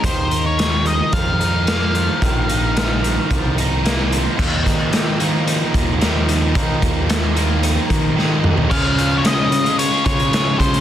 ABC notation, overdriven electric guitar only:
X:1
M:4/4
L:1/16
Q:1/4=111
K:Ebdor
V:1 name="Overdriven electric guitar" clef=bass
E,2 E2 F,2 E,2 F,2 E2 B,2 F,2 | E,2 E2 F,2 E,2 F,2 E2 B,2 F,2 | [E,F,B,E]6 [E,F,B,E]6 [E,F,B,E]4 | [E,F,B,E]6 [E,F,B,E]6 [E,F,B,E]4 |
[D,F,A,DF] [A,DF] [F,A,DF]2 [D,F,A,DF] [A,DF]2 [A,DF]2 [A,DF] [F,A,DF]2 [D,F,A,DF]2 [F,A,DF] [A,DF] |]